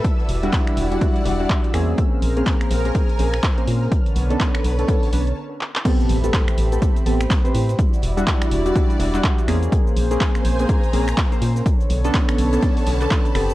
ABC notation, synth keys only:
X:1
M:4/4
L:1/16
Q:"Swing 16ths" 1/4=124
K:Em
V:1 name="Synth keys"
z3 [G,DEF]4 [G,DEF] [G,DEF]2 [G,DEF] [G,DEF]3 [_B,C^C^G]2- | [_B,C^C^G]3 [B,=C_D_A]4 [B,CDA] [B,CDA] z [B,CDA] z2 [B,CDc]3 | z3 [B,^CDA]4 [B,CDA] [B,CDA]2 [B,CDB] z4 z | [B,CGA]3 [B,CGA]4 [B,CGA] [B,CGA] z [B,CGA] z2 [CGBc]3 |
z3 [G,DEF]4 [G,DEF] [G,DEF]2 [G,DEF] [G,DEF]3 [_B,C^C^G]2- | [_B,C^C^G]3 [B,=C_D_A]4 [B,CDA] [B,CDA] z [B,CDA] z2 [B,CDc]3 | z3 [B,^CDA]4 [B,CDA] [B,CDA]2 [B,CDA] [B,CDA]3 [B,=CGA]2 |]